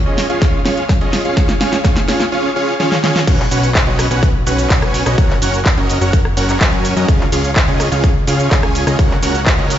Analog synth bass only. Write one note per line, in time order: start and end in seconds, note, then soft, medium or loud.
3.27 3.49 B1 loud
3.51 3.85 B1 loud
3.87 4.08 B1 loud
4.11 4.44 B1 loud
4.47 4.68 B1 loud
5.06 5.16 B1 loud
5.18 5.39 F#1 loud
5.42 5.75 F#1 loud
5.77 5.99 F#1 medium
6.01 6.35 F#1 loud
6.37 6.58 F#1 loud
6.61 6.94 F#2 loud
6.96 7.06 F#2 medium
7.08 7.30 C#2 loud
7.32 7.66 C#2 loud
7.68 7.89 C#2 loud
7.92 8.25 C#2 loud
8.28 8.49 C#2 loud
8.51 8.85 C#2 loud
8.87 8.97 C#2 medium
8.99 9.20 C#2 loud
9.23 9.56 C#2 loud
9.58 9.78 C#2 loud